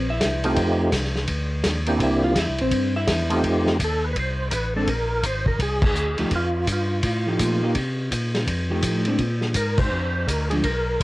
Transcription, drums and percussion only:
0.21 kick, snare, hi-hat pedal, ride
0.44 ride
0.56 kick, ride
0.92 kick, snare, hi-hat pedal, ride
1.04 snare
1.16 snare
1.28 kick, ride
1.64 kick, snare, hi-hat pedal, ride
1.86 ride
2.00 kick, ride
2.35 kick, snare, hi-hat pedal, ride
2.58 ride
2.71 kick, ride
3.07 kick, snare, hi-hat pedal, ride
3.30 ride
3.44 kick, ride
3.67 snare
3.79 kick, hi-hat pedal, ride
4.15 kick, ride
4.51 kick, hi-hat pedal, ride
4.87 kick, ride
5.23 kick, hi-hat pedal, ride
5.46 kick
5.59 kick, ride
5.82 kick, crash
5.95 hi-hat pedal
6.18 ride
6.31 kick, ride
6.67 kick, hi-hat pedal, ride
7.03 kick, ride
7.39 kick, hi-hat pedal, ride
7.75 kick, ride
8.11 kick, hi-hat pedal, ride
8.35 snare, ride
8.47 kick, ride
8.82 kick, hi-hat pedal, ride
9.05 ride
9.19 kick, ride
9.41 snare
9.54 kick, hi-hat pedal, ride
9.78 kick, crash
10.28 kick, hi-hat pedal, ride
10.51 ride
10.64 kick, ride

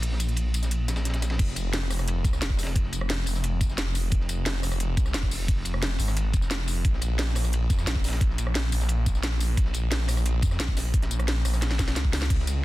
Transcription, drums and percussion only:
0.02 closed hi-hat, ride
0.12 snare
0.20 closed hi-hat, ride, tambourine
0.29 closed hi-hat
0.36 closed hi-hat, ride
0.54 closed hi-hat, ride, tambourine
0.63 snare, closed hi-hat, tambourine
0.71 closed hi-hat, ride
0.88 snare, closed hi-hat, ride, tambourine
0.96 snare, ride, tambourine
1.05 snare, closed hi-hat, ride
1.09 snare, ride
1.13 snare, closed hi-hat, ride
1.22 snare, closed hi-hat, ride, tambourine
1.30 snare, ride
1.39 kick, closed hi-hat, crash, ride
1.47 snare
1.56 closed hi-hat, ride, tambourine
1.73 snare, closed hi-hat, ride
1.82 snare
1.90 cross-stick, snare, open hi-hat, ride, tambourine
1.99 cross-stick, tambourine
2.08 closed hi-hat, ride
2.24 kick, closed hi-hat, ride, tambourine
2.33 cross-stick, snare, tambourine
2.41 snare, closed hi-hat, ride
2.50 kick, snare
2.57 snare, open hi-hat, ride, tambourine
2.63 snare, ride
2.67 snare, ride
2.76 kick, closed hi-hat, ride
2.84 snare
2.93 closed hi-hat, ride, tambourine
3.01 cross-stick
3.09 snare, closed hi-hat, ride
3.26 open hi-hat, ride, tambourine
3.35 snare, tambourine
3.44 closed hi-hat, ride
3.61 kick, closed hi-hat, ride, tambourine
3.69 snare, tambourine
3.77 snare, closed hi-hat, ride
3.86 snare
3.95 open hi-hat, ride, tambourine
4.11 kick, closed hi-hat, ride
4.20 snare
4.29 closed hi-hat, ride, tambourine
4.45 snare, closed hi-hat, ride
4.54 snare
4.62 cross-stick, snare, open hi-hat, ride, tambourine
4.72 cross-stick, tambourine
4.80 closed hi-hat, ride
4.97 kick, closed hi-hat, ride, tambourine
5.06 cross-stick, snare, tambourine
5.14 snare, closed hi-hat, ride
5.23 kick, snare
5.31 open hi-hat, tambourine
5.48 kick, closed hi-hat, ride
5.56 snare
5.65 closed hi-hat, ride, tambourine
5.74 cross-stick
5.82 snare, closed hi-hat, ride
5.99 open hi-hat, ride, tambourine
6.08 cross-stick, snare, tambourine
6.17 closed hi-hat, ride
6.33 kick, closed hi-hat, ride, tambourine
6.42 snare, tambourine
6.51 snare, closed hi-hat, ride
6.59 snare
6.67 open hi-hat, ride, tambourine
6.85 kick, closed hi-hat, ride
6.93 snare
7.02 closed hi-hat, ride, tambourine
7.18 snare, closed hi-hat, ride
7.28 snare
7.35 cross-stick, snare, open hi-hat, ride, tambourine
7.44 cross-stick, tambourine
7.53 closed hi-hat, ride
7.70 kick, closed hi-hat, ride, tambourine
7.79 cross-stick, snare, tambourine
7.87 snare, closed hi-hat, ride
7.95 kick, snare
8.04 snare, open hi-hat, ride, tambourine
8.08 snare, ride
8.13 snare, ride
8.21 kick, closed hi-hat, ride
8.30 snare
8.38 closed hi-hat, ride, tambourine
8.47 cross-stick
8.55 snare, closed hi-hat, ride
8.72 open hi-hat, ride, tambourine
8.81 snare, tambourine
8.89 closed hi-hat, ride
9.06 kick, closed hi-hat, ride, tambourine
9.15 snare, tambourine
9.23 snare, closed hi-hat, ride
9.31 snare
9.40 open hi-hat, ride, tambourine
9.57 kick, closed hi-hat, ride
9.65 snare
9.74 closed hi-hat, ride, tambourine
9.91 snare, closed hi-hat, ride
10.01 snare
10.08 cross-stick, snare, open hi-hat, ride, tambourine
10.17 cross-stick, tambourine
10.26 closed hi-hat, ride
10.42 kick, closed hi-hat, ride, tambourine
10.51 cross-stick, snare, tambourine
10.59 snare, closed hi-hat, ride
10.68 kick
10.77 snare, open hi-hat, ride, tambourine
10.94 kick, closed hi-hat, ride
11.02 snare, closed hi-hat, ride
11.11 closed hi-hat, tambourine
11.19 cross-stick, closed hi-hat, ride
11.28 snare, closed hi-hat, ride
11.45 cross-stick, open hi-hat, ride, tambourine
11.53 cross-stick, snare, tambourine
11.62 snare, closed hi-hat, ride
11.71 snare
11.79 kick, snare, closed hi-hat, ride, tambourine
11.87 snare, tambourine
11.96 snare, closed hi-hat, ride
12.05 kick
12.13 snare, open hi-hat, ride, tambourine
12.22 snare
12.30 kick, closed hi-hat, crash, ride
12.39 snare
12.47 closed hi-hat, ride, tambourine

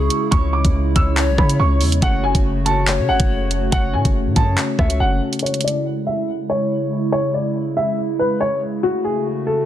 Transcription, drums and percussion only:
0.10 closed hi-hat
0.32 kick, closed hi-hat
0.65 kick, closed hi-hat
0.96 kick, closed hi-hat
1.17 clap, closed hi-hat
1.38 kick, cross-stick
1.49 closed hi-hat
1.81 open hi-hat
1.92 closed hi-hat
2.02 kick, closed hi-hat
2.35 kick, closed hi-hat
2.66 closed hi-hat
2.87 clap, closed hi-hat
3.20 kick, closed hi-hat
3.51 closed hi-hat
3.72 kick, closed hi-hat
4.05 kick, closed hi-hat
4.36 kick, closed hi-hat
4.58 clap, closed hi-hat
4.79 kick, cross-stick
4.90 closed hi-hat
5.33 closed hi-hat
5.39 closed hi-hat
5.46 closed hi-hat
5.54 closed hi-hat
5.61 closed hi-hat
5.68 closed hi-hat

